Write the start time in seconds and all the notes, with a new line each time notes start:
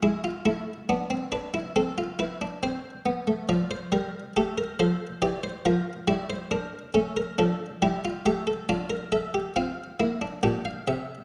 0.03 G#3 E4
0.24 F4
0.45 A3 E4
0.89 B3 D4
1.10 C4
1.32 D4 B4
1.54 E4
1.76 C4 A4
1.98 F4
2.19 E4 B4
2.41 D4
2.63 C4 C5
3.06 B3
3.27 A3
3.49 F3 F4 D5
3.71 C5
3.92 G3 A#4
4.37 A3 G4 A4
4.58 A#4
4.79 F3 A4 C5
5.22 E3 G4 D5
5.44 C5
5.65 F3 F4 A#4
6.08 G3 E4 D5
6.30 C5
6.51 D4 A#4
6.94 A3 C#4 A4
7.17 A#4
7.38 F3 D4 A4
7.82 G3 E4 G4
8.05 F4
8.26 A3 G4 E5
8.47 A4
8.69 D4 F4 D5
8.90 A#4
9.12 A4 E5
9.34 G4
9.56 C4 F4 F5
10.00 A#3 E4
10.22 D4
10.43 A#2 D4 G4 G5
10.65 F5
10.88 C3 E5